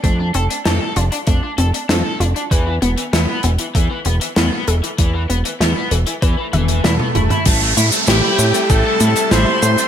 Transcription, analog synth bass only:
\new Staff \with { instrumentName = "Analog synth bass" } { \clef bass \time 4/4 \key a \minor \tempo 4 = 97 f,8 f,,8 f,8 f,,8 f,8 f,,8 f,8 f,,8 | e,8 e,,8 e,8 e,,8 e,8 e,,8 e,8 e,,8 | e,8 e,,8 e,8 e,,8 e,8 e,,8 e,8 e,,8 | a,,8 a,8 a,,8 a,8 a,,8 a,8 a,,8 a,8 | }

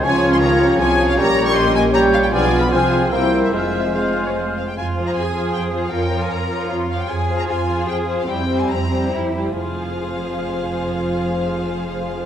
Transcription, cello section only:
\new Staff \with { instrumentName = "Cello section" } { \time 3/4 \key f \minor \tempo 4 = 153 des2 c4 | bes,2. | b,4 c4 c4 | f,2~ f,8 r8 |
f'4 aes'2 | bes'2 f'4 | aes'4 f'4 aes'4 | c'2 e'8 r8 |
f,2.~ | f,2. | }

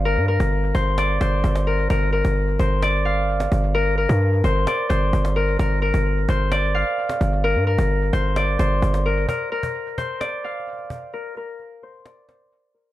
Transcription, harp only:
\new Staff \with { instrumentName = "Harp" } { \time 4/4 \key g \minor \tempo 4 = 130 bes'8 bes'4 c''8 d''8 c''4 bes'8 | bes'8 bes'4 c''8 d''8 f''4. | bes'8 bes'4 c''8 d''8 c''4 bes'8 | bes'8 bes'4 c''8 d''8 f''4. |
bes'8 bes'4 c''8 d''8 c''4 bes'8 | bes'8 bes'4 c''8 d''8 f''4. | bes'8 bes'4 c''8 d''8 c''4 bes'8 | }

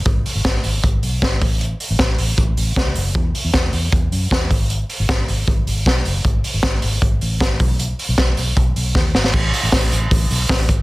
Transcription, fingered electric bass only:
\new Staff \with { instrumentName = "Fingered electric bass" } { \clef bass \time 4/4 \key gis \phrygian \tempo 4 = 155 gis,,8 r16 gis,,16 gis,,8 gis,,8 gis,,8 b,,8 r8 a,,8~ | a,,8 r16 a,,16 a,,8 a,,8 a,,8 a,,8 cis,8 fis,,8 | e,8 r16 e,16 e,8 e,8 e,8 fis,8 e,8 gis,,8~ | gis,,8 r16 gis,,16 gis,,8 gis,,8 gis,,8 gis,,8 b,,8 fis,,8 |
gis,,8 r16 gis,,16 r8 gis,,8 gis,,8 a,,8 gis,,8 b,,8~ | b,,8 r16 b,,16 b,,8 b,,8 b,,8 b,,8 dis,8 gis,,8 | a,,8 r16 a,,16 a,,8 a,,8 a,,8 b,,8 r8 gis,,8 | }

